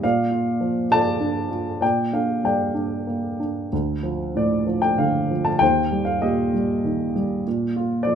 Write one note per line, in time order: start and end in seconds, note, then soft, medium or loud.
0.03 1.78 A#2 medium
0.03 0.86 D5 medium
0.03 0.86 F5 medium
0.31 0.89 F4 soft
0.61 1.78 F3 soft
0.91 1.49 F4 medium
0.91 1.78 D5 medium
0.91 1.85 A5 loud
1.20 1.80 D4 soft
1.51 1.81 F4 soft
1.81 3.68 A#2 medium
1.81 2.44 D5 medium
1.81 2.11 G5 medium
2.13 2.73 D4 soft
2.13 2.42 F5 medium
2.44 3.68 G3 soft
2.44 3.37 D5 soft
2.44 3.37 G5 medium
2.74 3.38 D4 soft
3.07 3.70 A#3 soft
3.40 3.71 D4 soft
3.73 5.57 D2 medium
4.03 4.65 F3 soft
4.35 5.57 A2 soft
4.35 4.80 D5 medium
4.67 5.29 F3 soft
4.82 4.99 G5 medium
4.98 5.59 D3 soft
4.98 5.47 F5 medium
5.31 5.60 F3 soft
5.45 5.61 A5 medium
5.59 7.41 D#2 medium
5.59 6.51 C5 medium
5.59 6.08 G5 medium
5.92 6.52 G3 soft
6.05 6.21 F5 medium
6.22 7.42 A#2 soft
6.22 7.12 G4 soft
6.22 7.11 D#5 medium
6.54 7.14 G3 medium
6.85 7.44 D#3 medium
7.16 7.45 G3 medium
7.47 8.15 A#2 medium
7.76 8.15 F4 medium
8.03 8.15 F3 soft
8.03 8.15 D5 medium